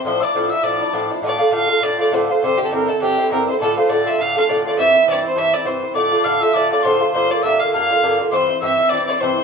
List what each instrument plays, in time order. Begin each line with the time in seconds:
0.05 bouzouki A2 F3 D4 E4, fiddle C5, tin whistle C6
0.21 bouzouki F3 D4 E4, fiddle D5, tin whistle D6 E6
0.35 bouzouki A2 F3 D4 E4
0.50 bouzouki D4 E4, fiddle E5, tin whistle E6
0.54 bouzouki F3
0.63 bouzouki A2 F3 D4 E4, fiddle D5, tin whistle D6
0.81 bouzouki F3 D4 E4
0.93 bouzouki A2 F3 D4 E4
1.10 bouzouki F3 D4 E4
1.22 bouzouki A2 D3 A3 F4
1.27 fiddle D5
1.38 bouzouki D3 A3 F4
1.51 bouzouki A2 D3 A3 F4, fiddle F5
1.67 bouzouki D3 A3 F4
1.80 bouzouki A2 D3 A3 F4, fiddle D5
1.98 bouzouki D3 A3 F4, fiddle D5
2.11 bouzouki A2 D3 A3 F4, fiddle C5
2.30 bouzouki D3 A3 F4, fiddle C5
2.42 bouzouki G2 D3 C4 E4, fiddle C5
2.58 bouzouki D3 C4 E4, fiddle G4
2.66 fiddle A4
2.71 bouzouki G2 D3 C4 E4, fiddle A#4
2.88 bouzouki D3 C4 E4, fiddle A4
3.00 bouzouki G2 D3 C4 E4, fiddle G4
3.17 bouzouki D3 C4 E4
3.31 bouzouki G2 D3 C4 E4, fiddle A#4
3.48 bouzouki D3 C4 E4, fiddle C5
3.60 bouzouki A2 D3 A3 F4, fiddle A4
3.77 bouzouki D3 A3 F4, fiddle C5
3.90 bouzouki A2 D3 A3 F4, fiddle D5
4.06 bouzouki D3 A3 F4, fiddle E5
4.18 bouzouki A2 D3 A3 F4, fiddle F5
4.35 bouzouki D3 A3 F4, fiddle F5
4.49 bouzouki A2 D3 A3 F4, fiddle D5
4.65 bouzouki D3 A3 F4, fiddle D5
4.78 bouzouki G2 E3 C4 E4, fiddle E5
4.94 bouzouki E3 C4 E4
5.06 bouzouki G2 E3 C4 E4, fiddle D5
5.23 bouzouki E3 C4 E4
5.27 fiddle C5
5.36 bouzouki G2 E3 C4 E4, fiddle E5
5.53 bouzouki E3 C4 E4, fiddle D5
5.65 bouzouki G2 E3 C4 E4, fiddle C5
5.83 bouzouki E3 C4 E4
5.94 bouzouki A2 D3 A3 F4, fiddle D5, tin whistle D6
6.11 bouzouki D3 A3 F4
6.24 bouzouki A2 D3 A3 F4, fiddle F5, tin whistle F6
6.41 bouzouki D3 A3 F4, fiddle E5, tin whistle E6
6.54 bouzouki A2 D3 A3 F4, fiddle D5, tin whistle D6
6.71 bouzouki D3 A3 F4, fiddle D5, tin whistle D6
6.83 bouzouki A2 D3 A3 F4, fiddle C5, tin whistle C6
7.00 bouzouki D3 A3 F4
7.12 bouzouki G2 D3 A#3 F4, fiddle C5, tin whistle C6
7.30 bouzouki D3 A#3 F4, fiddle D5, tin whistle D6
7.43 bouzouki G2 D3 A#3 F4, fiddle E5, tin whistle E6
7.60 bouzouki D3 A#3 F4, fiddle F5, tin whistle F6
7.72 bouzouki G2 D3 A#3, fiddle F5, tin whistle F6
7.76 bouzouki F4
7.91 bouzouki D3 A#3 F4
8.02 bouzouki G2 D3 A#3 F4
8.19 bouzouki D3 A#3 F4
8.31 bouzouki G2 E3 C4 E4, fiddle C5, tin whistle D6
8.35 tin whistle C6
8.49 bouzouki E3 C4 E4
8.61 bouzouki G2 E3 C4 E4, fiddle E5, tin whistle E6
8.78 bouzouki E3 C4 E4
8.89 bouzouki G2 E3 C4, fiddle D5, tin whistle D6
8.94 bouzouki E4
9.07 bouzouki C4 E4, fiddle D5, tin whistle D6
9.12 bouzouki E3
9.20 bouzouki G2 E3 C4 E4, fiddle C5, tin whistle C6
9.38 bouzouki E3 C4 E4